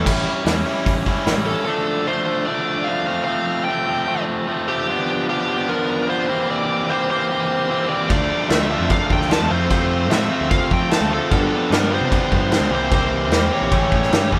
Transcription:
0.05 A1 E3 G3 C#4 E4, kick, crash
0.44 E2 G3 C#4 E4, snare, open hi-hat
0.66 E3 G3 C#4 E4
0.86 A1, kick, open hi-hat
1.05 E3 G3 C#4 E4, kick
1.25 A1 G3 C#4 E4, snare, open hi-hat
1.37 A1
1.46 C#4 E4 A4
1.65 F3 A3 D4 A4
2.07 F3 A3 D4 C5
2.26 F3 A3 D4
2.46 F3 A3 D4 D5
2.84 F3 A3 F5
2.88 D4
3.07 F3 A3 C4
3.24 F3 A3 C4 F5
3.65 F3 A3 G5
3.69 C4
3.87 F3 A3 C4
4.07 F3 A3 C4
4.47 F3 A3 C4
4.68 F3 A3 C4 G4
4.89 F3 B3 D4 F4
5.29 F3 B3 D4 F4 G4
5.49 F3 B3 D4 F4
5.69 F3 B3 D4 F4 A#4
6.08 F3 B3 D4 F4 C5
6.29 E3 A#3 C4 G4
6.48 E3 A#3 C4 G4 D5
6.89 E3 A#3 C4 G4 C5
7.10 E3 A#3 C4 G4 C5
7.30 E3 A#3 C4 G4
7.70 E3 A#3 C4 G4
7.89 E3 A#3 C4 G4 D5
8.09 D2 D3 F3 A3 D4 F4 D5, kick, crash
8.49 D2 D3 F3 A3 D4 F4 E5, snare, crash
8.70 D3 F3 A3 D4 F4
8.79 F2
8.90 D3 F3 A3 D4 F4 F5, kick, crash
9.10 D2 G5, kick
9.21 snare
9.30 D3 F3 A3 D4 F4 A5, snare, crash
9.40 E2
9.49 F2 C3 F3 A3 C4 F4 C5
9.69 F2 C3 F3 A3 C4 F4 C5, kick, crash
10.10 F2 A2 C3 F3 A3 C4 F4 E5, snare, crash
10.29 F2 C3 F3 A3 C4 F4
10.41 D2
10.50 F2 C3 F3 A3 C4 F4 F5, kick, crash
10.71 F3 G5, kick
10.90 F2 C3 F3 A3 C4 F4 A5, snare, crash
11.01 D2
11.10 F2 C3 F3 A3 C4 F4 A4
11.31 G2 D3 F3 G3 B3 D4 F4 G4 A4, kick, crash
11.70 G2 D3 F3 G3 B3 D4 F4 G4 A#4, snare, crash
11.90 G2 D3 F3 G3 B3 D4 F4 G4
11.94 C5
12.01 C3
12.10 G2 D3 F3 G3 B3 D4 F4 G4, kick, crash
12.32 G2, kick
12.51 G2 D3 F3 G3 B3 D4 F4 G4, snare, crash
12.61 D2
12.70 C2 C3 E3 G3 A#3 C4 E4 G4
12.75 C5
12.91 C3 E3 G3 A#3 C4 E4 G4 C5, kick, crash
13.30 E2 C3 E3 G3 A#3 C4 E4 G4, snare, crash
13.51 C3 E3 G3 A#3 C4 E4 G4 C#5
13.62 A#1
13.72 A1 A2 E3 G3 A3 C#4 G4, kick, crash
13.92 A2, kick
14.03 snare
14.12 G2 A2 E3 G3 A3 C#4 G4, snare, crash
14.32 E2 A2 E3 G3 A3 C#4 G4, kick

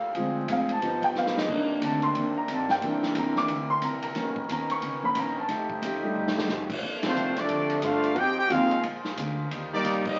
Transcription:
Already playing: C2 A#2 G3 F4 A4 F5
0.15 D2 D3 F3 G#3 C4 D4 F4 G#4, kick, ride
0.47 F1 D3 C4 F4 G#4 E5, kick, hi-hat pedal, ride
0.52 F5
0.69 A5, ride
0.81 G1 G2 F3 B3 D#4 G4, kick, ride
0.85 D#4
1.02 G5, kick, ride
1.15 B1 G2 F3 B3 D#4 F5, snare, hi-hat pedal
1.26 snare
1.36 D#5, snare
1.47 C2 C3 D#3 A#3 C4 D4 D#4 A#4 D5, kick, crash
1.81 D2 C3 D#3 A#3 D4 A5, kick, hi-hat pedal, ride
2.02 C6, ride
2.15 D#2 C3 D#3 A#3 D4, kick, ride
2.38 A#5
2.48 G2 C3 D#3 A#3 D4, kick, hi-hat pedal, ride
2.53 A5
2.69 G5, snare
2.81 C2 C3 E3 A#3 D4, kick, ride
3.03 snare
3.15 E2 C3 E3 A#3 D4 A#5, kick, hi-hat pedal, ride
3.36 E3 A#3 D4 D6, snare
3.48 D2 C3 E3 A#3 D4, kick, ride
3.70 C6
3.81 C2 C3 E3 A#3 D4 A#5, kick, hi-hat pedal, ride
4.02 A#5, ride
4.15 B1 B2 D#3 A#3 B3 C#4, kick, snare, ride
4.36 kick
4.49 D#2 B2 D#3 A#3 C#4 A#5, kick, hi-hat pedal, ride
4.70 C#6, ride
4.82 C#2 B2 D#3 A#3 C#4, kick, ride
5.03 D#3 A#3 C#4 B5
5.15 A#1 B2 D#3 A#3 C#4, kick, hi-hat pedal, ride
5.19 A#5
5.39 A5
5.48 F1 F3 A3 D#4 G4, kick, snare, ride
5.70 kick
5.82 A1 F3 A3 D#4 G4, kick, hi-hat pedal, ride
6.03 G3 A3 D#4, muted upright bass stroke
6.15 G1 F3 A3 D#4 G4
6.28 snare
6.38 snare
6.48 F1 F3 A3 D#4 G4, snare, hi-hat pedal
6.70 kick, crash
6.82 A#1 A#2 C3 A3 A#3 D4 A4 C5, kick
7.03 F3 A3 C4, snare, ride
7.07 A3 D4 F4 C5
7.15 C2 A#3 D4 A4, hi-hat pedal
7.19 C5
7.36 F3 A3 C4 D4 F4 A4 D5, snare, ride
7.49 D2 A#3 D4, kick, ride
7.53 A4 C5
7.70 ride
7.79 G2 A#3 D#5, kick, hi-hat pedal, ride
7.84 A3 D4 F4 A4 C5 F5
8.03 ride
8.16 F2 D#3 F3 G#3 C4 D#4 F4 G4 G#4 C5 G5, kick, ride
8.38 D#4 G4 G#4 C5 G5
8.49 D#2 F3 G#3 C4 D#4 F4 G#4 C5 F5, kick, hi-hat pedal, ride
8.71 ride
8.83 A#1 A#2 F3 G#3 A#3 D4 F4, kick, ride
9.04 snare
9.17 D2 A#2 G#3 D4 F4, kick, hi-hat pedal, ride
9.51 D#2 D#3 G3 A#3 D4 D#4, kick, ride
9.73 G3 A#3 D#4 G4 D5
9.84 C2 D#3 G3 A#3 D4, kick, hi-hat pedal, ride
10.05 G3 A#3 D#4 G4 D5 D#5, kick, crash

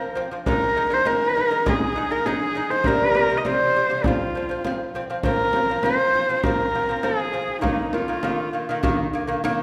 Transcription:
Already playing: C4 A#4
0.15 F3 C4, frame drum
0.31 F3 C4
0.46 G#3 D#4 A#4, frame drum
0.76 G#3 D#4
0.90 G#3 D#4 C5
1.05 G#3 D#4 A#4, frame drum
1.35 G#3 D#4, frame drum
1.51 G#3 D#4
1.66 G#3 D#4 G#4, frame drum
1.96 G#3 D#4, frame drum
2.11 G#3 D#4 A#4
2.26 G#3 D#4 G#4, frame drum
2.55 G#3 D#4, frame drum
2.70 G#3 D#4 C5
2.84 C3 G3 A#4, frame drum
3.15 C3 G3, frame drum
3.30 C3 G3
3.37 D#5
3.45 C3 G3 C5, frame drum
3.75 C3 G3, frame drum
3.90 C3 G3
4.04 F3 C4 F4, frame drum
4.35 F3 C4, frame drum
4.49 F3 C4
4.65 F3 C4, frame drum
4.94 F3 C4, frame drum
5.10 F3 C4
5.23 F3 C4 A#4, frame drum
5.53 F3 C4, frame drum
5.70 F3 C4
5.83 F3 C4 C5, frame drum
6.13 F3 C4, frame drum
6.29 F3 C4
6.37 C5
6.43 F3 C4 A#4, frame drum
6.75 F3 C4
6.88 F3 C4, frame drum
7.03 F3 C4 G#4, frame drum
7.33 F3 C4
7.48 frame drum
7.61 D#3 A#3 D#4, frame drum
7.93 D#3 A#3 F4, frame drum
8.08 D#3 A#3
8.23 D#3 A#3, frame drum
8.53 D#3 A#3
8.69 D#3 A#3
8.83 D#3 A#3, frame drum
9.13 D#3 A#3
9.27 D#3 A#3, frame drum
9.44 D#3 A#3, frame drum

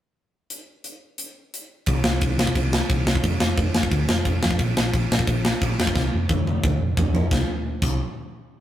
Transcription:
0.50 closed hi-hat
0.84 closed hi-hat
1.18 closed hi-hat
1.54 closed hi-hat
1.86 C2, kick, crash
2.04 C2, snare
2.21 C2, kick, crash
2.38 C2, snare
2.47 kick
2.55 C2, kick, crash
2.73 snare
2.90 C2, kick, crash
3.05 C2, snare
3.15 kick
3.24 F1, kick, crash
3.40 F1, snare
3.58 F1, kick, crash
3.75 F1, snare
3.83 kick
3.92 D2, kick, crash
4.09 F1, snare
4.25 F1, kick, crash
4.43 F2, snare
4.51 kick
4.59 A#1, kick, crash
4.77 A#1, snare
4.94 A#1, kick, crash
5.12 A#1, snare
5.19 kick
5.27 A#1, kick, crash
5.45 snare
5.62 A#1, kick, crash
5.79 F1, snare
5.87 kick
5.95 C2, kick, snare
6.14 F1
6.29 F1, kick, high tom
6.46 F1, high tom
6.64 D2, kick, mid tom
6.80 F1
6.97 F1, kick, floor tom
7.13 F2, floor tom
7.31 C2, kick, snare
7.82 C2, kick, crash

